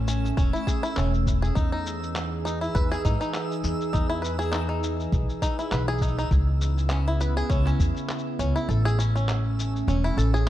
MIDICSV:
0, 0, Header, 1, 6, 480
1, 0, Start_track
1, 0, Key_signature, 4, "major"
1, 0, Tempo, 594059
1, 1260, Time_signature, 4, 2, 24, 8
1, 8476, End_track
2, 0, Start_track
2, 0, Title_t, "Synth texture"
2, 0, Program_c, 0, 99
2, 0, Note_on_c, 0, 88, 82
2, 8476, Note_off_c, 0, 88, 0
2, 8476, End_track
3, 0, Start_track
3, 0, Title_t, "Five-string banjo"
3, 0, Program_c, 1, 105
3, 63, Note_on_c, 1, 61, 65
3, 291, Note_off_c, 1, 61, 0
3, 300, Note_on_c, 1, 61, 77
3, 428, Note_off_c, 1, 61, 0
3, 431, Note_on_c, 1, 64, 67
3, 528, Note_off_c, 1, 64, 0
3, 541, Note_on_c, 1, 68, 66
3, 662, Note_off_c, 1, 68, 0
3, 672, Note_on_c, 1, 64, 92
3, 768, Note_off_c, 1, 64, 0
3, 776, Note_on_c, 1, 61, 79
3, 899, Note_off_c, 1, 61, 0
3, 1151, Note_on_c, 1, 68, 72
3, 1248, Note_off_c, 1, 68, 0
3, 1255, Note_on_c, 1, 63, 74
3, 1379, Note_off_c, 1, 63, 0
3, 1393, Note_on_c, 1, 63, 71
3, 1861, Note_off_c, 1, 63, 0
3, 1981, Note_on_c, 1, 63, 71
3, 2108, Note_off_c, 1, 63, 0
3, 2111, Note_on_c, 1, 64, 67
3, 2208, Note_off_c, 1, 64, 0
3, 2221, Note_on_c, 1, 71, 77
3, 2342, Note_off_c, 1, 71, 0
3, 2356, Note_on_c, 1, 68, 97
3, 2451, Note_off_c, 1, 68, 0
3, 2462, Note_on_c, 1, 63, 70
3, 2582, Note_off_c, 1, 63, 0
3, 2592, Note_on_c, 1, 63, 68
3, 3060, Note_off_c, 1, 63, 0
3, 3176, Note_on_c, 1, 63, 77
3, 3306, Note_off_c, 1, 63, 0
3, 3309, Note_on_c, 1, 64, 79
3, 3407, Note_off_c, 1, 64, 0
3, 3410, Note_on_c, 1, 71, 70
3, 3536, Note_off_c, 1, 71, 0
3, 3546, Note_on_c, 1, 68, 91
3, 3645, Note_off_c, 1, 68, 0
3, 3649, Note_on_c, 1, 63, 73
3, 3776, Note_off_c, 1, 63, 0
3, 3789, Note_on_c, 1, 63, 72
3, 4258, Note_off_c, 1, 63, 0
3, 4380, Note_on_c, 1, 63, 76
3, 4508, Note_off_c, 1, 63, 0
3, 4516, Note_on_c, 1, 64, 71
3, 4610, Note_off_c, 1, 64, 0
3, 4621, Note_on_c, 1, 71, 73
3, 4742, Note_off_c, 1, 71, 0
3, 4752, Note_on_c, 1, 68, 98
3, 4848, Note_off_c, 1, 68, 0
3, 4864, Note_on_c, 1, 63, 70
3, 4983, Note_off_c, 1, 63, 0
3, 4998, Note_on_c, 1, 63, 80
3, 5102, Note_off_c, 1, 63, 0
3, 5585, Note_on_c, 1, 61, 68
3, 5710, Note_off_c, 1, 61, 0
3, 5718, Note_on_c, 1, 64, 70
3, 5811, Note_off_c, 1, 64, 0
3, 5823, Note_on_c, 1, 71, 69
3, 5943, Note_off_c, 1, 71, 0
3, 5954, Note_on_c, 1, 68, 94
3, 6050, Note_off_c, 1, 68, 0
3, 6057, Note_on_c, 1, 61, 77
3, 6180, Note_off_c, 1, 61, 0
3, 6195, Note_on_c, 1, 61, 67
3, 6662, Note_off_c, 1, 61, 0
3, 6782, Note_on_c, 1, 61, 72
3, 6909, Note_off_c, 1, 61, 0
3, 6914, Note_on_c, 1, 64, 79
3, 7009, Note_off_c, 1, 64, 0
3, 7019, Note_on_c, 1, 69, 71
3, 7141, Note_off_c, 1, 69, 0
3, 7154, Note_on_c, 1, 68, 94
3, 7249, Note_off_c, 1, 68, 0
3, 7261, Note_on_c, 1, 61, 68
3, 7382, Note_off_c, 1, 61, 0
3, 7398, Note_on_c, 1, 61, 68
3, 7863, Note_off_c, 1, 61, 0
3, 7984, Note_on_c, 1, 61, 79
3, 8110, Note_off_c, 1, 61, 0
3, 8115, Note_on_c, 1, 64, 75
3, 8210, Note_off_c, 1, 64, 0
3, 8223, Note_on_c, 1, 69, 71
3, 8343, Note_off_c, 1, 69, 0
3, 8354, Note_on_c, 1, 68, 91
3, 8450, Note_off_c, 1, 68, 0
3, 8476, End_track
4, 0, Start_track
4, 0, Title_t, "Ambient pad"
4, 0, Program_c, 2, 92
4, 0, Note_on_c, 2, 57, 78
4, 0, Note_on_c, 2, 61, 89
4, 1239, Note_off_c, 2, 57, 0
4, 1239, Note_off_c, 2, 61, 0
4, 1252, Note_on_c, 2, 52, 78
4, 1257, Note_on_c, 2, 63, 71
4, 1258, Note_on_c, 2, 68, 86
4, 5064, Note_off_c, 2, 52, 0
4, 5067, Note_off_c, 2, 63, 0
4, 5067, Note_off_c, 2, 68, 0
4, 5095, Note_on_c, 2, 59, 75
4, 5097, Note_on_c, 2, 49, 76
4, 5098, Note_on_c, 2, 64, 88
4, 6999, Note_off_c, 2, 49, 0
4, 6999, Note_off_c, 2, 59, 0
4, 7000, Note_off_c, 2, 64, 0
4, 7019, Note_on_c, 2, 61, 88
4, 7022, Note_on_c, 2, 57, 76
4, 8476, Note_off_c, 2, 57, 0
4, 8476, Note_off_c, 2, 61, 0
4, 8476, End_track
5, 0, Start_track
5, 0, Title_t, "Upright bass"
5, 0, Program_c, 3, 32
5, 0, Note_on_c, 3, 33, 82
5, 242, Note_off_c, 3, 33, 0
5, 304, Note_on_c, 3, 28, 72
5, 390, Note_off_c, 3, 28, 0
5, 783, Note_on_c, 3, 28, 78
5, 1203, Note_off_c, 3, 28, 0
5, 1264, Note_on_c, 3, 40, 82
5, 2163, Note_off_c, 3, 40, 0
5, 2224, Note_on_c, 3, 40, 87
5, 2388, Note_off_c, 3, 40, 0
5, 2465, Note_on_c, 3, 44, 77
5, 2550, Note_off_c, 3, 44, 0
5, 2940, Note_on_c, 3, 40, 75
5, 3028, Note_off_c, 3, 40, 0
5, 3184, Note_on_c, 3, 40, 88
5, 4083, Note_off_c, 3, 40, 0
5, 4140, Note_on_c, 3, 35, 80
5, 4228, Note_off_c, 3, 35, 0
5, 4618, Note_on_c, 3, 35, 81
5, 5040, Note_off_c, 3, 35, 0
5, 5099, Note_on_c, 3, 37, 88
5, 6001, Note_off_c, 3, 37, 0
5, 6060, Note_on_c, 3, 37, 86
5, 6226, Note_off_c, 3, 37, 0
5, 6299, Note_on_c, 3, 40, 76
5, 6387, Note_off_c, 3, 40, 0
5, 6780, Note_on_c, 3, 37, 81
5, 6868, Note_off_c, 3, 37, 0
5, 7020, Note_on_c, 3, 33, 87
5, 7921, Note_off_c, 3, 33, 0
5, 7979, Note_on_c, 3, 28, 91
5, 8146, Note_off_c, 3, 28, 0
5, 8218, Note_on_c, 3, 33, 95
5, 8476, Note_off_c, 3, 33, 0
5, 8476, End_track
6, 0, Start_track
6, 0, Title_t, "Drums"
6, 64, Note_on_c, 9, 82, 82
6, 145, Note_off_c, 9, 82, 0
6, 202, Note_on_c, 9, 82, 29
6, 283, Note_off_c, 9, 82, 0
6, 303, Note_on_c, 9, 36, 114
6, 308, Note_on_c, 9, 82, 40
6, 384, Note_off_c, 9, 36, 0
6, 389, Note_off_c, 9, 82, 0
6, 446, Note_on_c, 9, 82, 30
6, 527, Note_off_c, 9, 82, 0
6, 544, Note_on_c, 9, 36, 61
6, 548, Note_on_c, 9, 82, 73
6, 624, Note_off_c, 9, 36, 0
6, 629, Note_off_c, 9, 82, 0
6, 684, Note_on_c, 9, 82, 31
6, 765, Note_off_c, 9, 82, 0
6, 783, Note_on_c, 9, 39, 79
6, 789, Note_on_c, 9, 82, 43
6, 864, Note_off_c, 9, 39, 0
6, 869, Note_off_c, 9, 82, 0
6, 922, Note_on_c, 9, 82, 28
6, 1002, Note_off_c, 9, 82, 0
6, 1023, Note_on_c, 9, 36, 58
6, 1029, Note_on_c, 9, 82, 76
6, 1104, Note_off_c, 9, 36, 0
6, 1110, Note_off_c, 9, 82, 0
6, 1164, Note_on_c, 9, 82, 31
6, 1245, Note_off_c, 9, 82, 0
6, 1264, Note_on_c, 9, 36, 103
6, 1264, Note_on_c, 9, 82, 41
6, 1344, Note_off_c, 9, 82, 0
6, 1345, Note_off_c, 9, 36, 0
6, 1507, Note_on_c, 9, 82, 76
6, 1588, Note_off_c, 9, 82, 0
6, 1642, Note_on_c, 9, 82, 31
6, 1722, Note_off_c, 9, 82, 0
6, 1743, Note_on_c, 9, 39, 98
6, 1748, Note_on_c, 9, 82, 44
6, 1823, Note_off_c, 9, 39, 0
6, 1829, Note_off_c, 9, 82, 0
6, 1991, Note_on_c, 9, 82, 73
6, 2072, Note_off_c, 9, 82, 0
6, 2124, Note_on_c, 9, 82, 28
6, 2205, Note_off_c, 9, 82, 0
6, 2225, Note_on_c, 9, 36, 108
6, 2227, Note_on_c, 9, 82, 40
6, 2306, Note_off_c, 9, 36, 0
6, 2307, Note_off_c, 9, 82, 0
6, 2360, Note_on_c, 9, 39, 25
6, 2366, Note_on_c, 9, 82, 28
6, 2441, Note_off_c, 9, 39, 0
6, 2447, Note_off_c, 9, 82, 0
6, 2464, Note_on_c, 9, 36, 60
6, 2467, Note_on_c, 9, 82, 74
6, 2545, Note_off_c, 9, 36, 0
6, 2548, Note_off_c, 9, 82, 0
6, 2600, Note_on_c, 9, 82, 32
6, 2681, Note_off_c, 9, 82, 0
6, 2700, Note_on_c, 9, 39, 88
6, 2706, Note_on_c, 9, 82, 41
6, 2781, Note_off_c, 9, 39, 0
6, 2787, Note_off_c, 9, 82, 0
6, 2841, Note_on_c, 9, 82, 28
6, 2921, Note_off_c, 9, 82, 0
6, 2941, Note_on_c, 9, 82, 76
6, 3022, Note_off_c, 9, 82, 0
6, 3079, Note_on_c, 9, 82, 32
6, 3160, Note_off_c, 9, 82, 0
6, 3183, Note_on_c, 9, 36, 97
6, 3187, Note_on_c, 9, 82, 38
6, 3264, Note_off_c, 9, 36, 0
6, 3268, Note_off_c, 9, 82, 0
6, 3429, Note_on_c, 9, 82, 70
6, 3509, Note_off_c, 9, 82, 0
6, 3562, Note_on_c, 9, 82, 29
6, 3643, Note_off_c, 9, 82, 0
6, 3663, Note_on_c, 9, 39, 98
6, 3669, Note_on_c, 9, 82, 40
6, 3744, Note_off_c, 9, 39, 0
6, 3750, Note_off_c, 9, 82, 0
6, 3906, Note_on_c, 9, 82, 74
6, 3987, Note_off_c, 9, 82, 0
6, 4040, Note_on_c, 9, 82, 26
6, 4121, Note_off_c, 9, 82, 0
6, 4140, Note_on_c, 9, 36, 107
6, 4144, Note_on_c, 9, 82, 38
6, 4221, Note_off_c, 9, 36, 0
6, 4225, Note_off_c, 9, 82, 0
6, 4279, Note_on_c, 9, 82, 25
6, 4359, Note_off_c, 9, 82, 0
6, 4380, Note_on_c, 9, 36, 54
6, 4384, Note_on_c, 9, 82, 71
6, 4461, Note_off_c, 9, 36, 0
6, 4465, Note_off_c, 9, 82, 0
6, 4517, Note_on_c, 9, 82, 28
6, 4598, Note_off_c, 9, 82, 0
6, 4621, Note_on_c, 9, 39, 88
6, 4626, Note_on_c, 9, 82, 38
6, 4701, Note_off_c, 9, 39, 0
6, 4707, Note_off_c, 9, 82, 0
6, 4761, Note_on_c, 9, 82, 12
6, 4830, Note_off_c, 9, 82, 0
6, 4830, Note_on_c, 9, 82, 17
6, 4859, Note_on_c, 9, 36, 59
6, 4865, Note_off_c, 9, 82, 0
6, 4865, Note_on_c, 9, 82, 69
6, 4911, Note_off_c, 9, 82, 0
6, 4911, Note_on_c, 9, 82, 22
6, 4939, Note_off_c, 9, 36, 0
6, 4992, Note_off_c, 9, 82, 0
6, 4999, Note_on_c, 9, 82, 29
6, 5080, Note_off_c, 9, 82, 0
6, 5098, Note_on_c, 9, 36, 96
6, 5104, Note_on_c, 9, 82, 36
6, 5179, Note_off_c, 9, 36, 0
6, 5185, Note_off_c, 9, 82, 0
6, 5342, Note_on_c, 9, 82, 75
6, 5423, Note_off_c, 9, 82, 0
6, 5476, Note_on_c, 9, 82, 31
6, 5557, Note_off_c, 9, 82, 0
6, 5573, Note_on_c, 9, 39, 97
6, 5579, Note_on_c, 9, 82, 43
6, 5654, Note_off_c, 9, 39, 0
6, 5659, Note_off_c, 9, 82, 0
6, 5823, Note_on_c, 9, 82, 70
6, 5903, Note_off_c, 9, 82, 0
6, 5956, Note_on_c, 9, 82, 25
6, 6037, Note_off_c, 9, 82, 0
6, 6059, Note_on_c, 9, 36, 104
6, 6063, Note_on_c, 9, 82, 39
6, 6139, Note_off_c, 9, 36, 0
6, 6143, Note_off_c, 9, 82, 0
6, 6191, Note_on_c, 9, 39, 28
6, 6196, Note_on_c, 9, 82, 26
6, 6272, Note_off_c, 9, 39, 0
6, 6277, Note_off_c, 9, 82, 0
6, 6299, Note_on_c, 9, 36, 53
6, 6302, Note_on_c, 9, 82, 67
6, 6380, Note_off_c, 9, 36, 0
6, 6382, Note_off_c, 9, 82, 0
6, 6437, Note_on_c, 9, 82, 31
6, 6518, Note_off_c, 9, 82, 0
6, 6539, Note_on_c, 9, 39, 80
6, 6544, Note_on_c, 9, 82, 37
6, 6612, Note_off_c, 9, 82, 0
6, 6612, Note_on_c, 9, 82, 27
6, 6619, Note_off_c, 9, 39, 0
6, 6693, Note_off_c, 9, 82, 0
6, 6785, Note_on_c, 9, 82, 70
6, 6866, Note_off_c, 9, 82, 0
6, 6922, Note_on_c, 9, 82, 28
6, 7003, Note_off_c, 9, 82, 0
6, 7028, Note_on_c, 9, 82, 36
6, 7109, Note_off_c, 9, 82, 0
6, 7167, Note_on_c, 9, 82, 29
6, 7248, Note_off_c, 9, 82, 0
6, 7270, Note_on_c, 9, 82, 72
6, 7351, Note_off_c, 9, 82, 0
6, 7402, Note_on_c, 9, 82, 31
6, 7483, Note_off_c, 9, 82, 0
6, 7504, Note_on_c, 9, 39, 92
6, 7510, Note_on_c, 9, 82, 41
6, 7585, Note_off_c, 9, 39, 0
6, 7591, Note_off_c, 9, 82, 0
6, 7752, Note_on_c, 9, 82, 74
6, 7833, Note_off_c, 9, 82, 0
6, 7887, Note_on_c, 9, 82, 29
6, 7968, Note_off_c, 9, 82, 0
6, 7992, Note_on_c, 9, 82, 38
6, 8072, Note_off_c, 9, 82, 0
6, 8124, Note_on_c, 9, 82, 28
6, 8204, Note_off_c, 9, 82, 0
6, 8229, Note_on_c, 9, 82, 71
6, 8310, Note_off_c, 9, 82, 0
6, 8365, Note_on_c, 9, 82, 29
6, 8446, Note_off_c, 9, 82, 0
6, 8476, End_track
0, 0, End_of_file